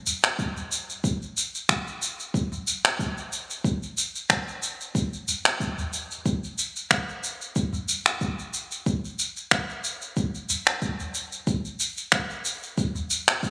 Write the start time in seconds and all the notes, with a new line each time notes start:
0.07 udu, shaker
0.24 finger snap, shaker
0.39 kick, shaker
0.56 udu, shaker
0.72 shaker
0.90 shaker
1.04 kick, shaker
1.22 shaker
1.37 shaker
1.55 shaker
1.69 finger snap, kick, shaker
1.87 shaker
2.02 shaker
2.20 shaker
2.34 kick, shaker
2.52 udu, shaker
2.67 shaker
2.85 finger snap, shaker
2.99 kick, shaker
3.18 shaker
3.33 shaker
3.50 shaker
3.64 kick, shaker
3.83 shaker
3.98 shaker
4.16 shaker
4.30 finger snap, kick, shaker
4.48 shaker
4.63 shaker
4.81 shaker
4.95 kick, shaker
5.13 shaker
5.28 udu, shaker
5.45 finger snap, shaker
5.60 kick, shaker
5.78 udu, shaker
5.93 shaker
6.11 shaker
6.26 kick, shaker
6.44 shaker
6.58 shaker
6.76 shaker
6.91 finger snap, kick, shaker
7.09 shaker
7.24 shaker
7.42 shaker
7.56 kick, shaker
7.73 udu, shaker
7.89 shaker
8.06 finger snap, shaker
8.21 kick, shaker
8.39 shaker
8.54 shaker
8.72 shaker
8.86 kick, shaker
9.05 shaker
9.19 shaker
9.37 shaker
9.51 finger snap, kick, shaker
9.70 shaker
9.84 shaker
10.02 shaker
10.17 kick, shaker
10.35 shaker
10.49 udu, shaker
10.67 finger snap, shaker
10.82 kick, shaker
11.00 udu, shaker
11.14 shaker
11.32 shaker
11.47 kick, shaker
11.65 shaker
11.80 shaker
11.98 shaker
12.12 finger snap, kick, shaker
12.30 shaker
12.45 shaker
12.63 shaker
12.78 kick, shaker
12.95 udu, shaker
13.10 shaker
13.28 finger snap, shaker
13.43 kick, shaker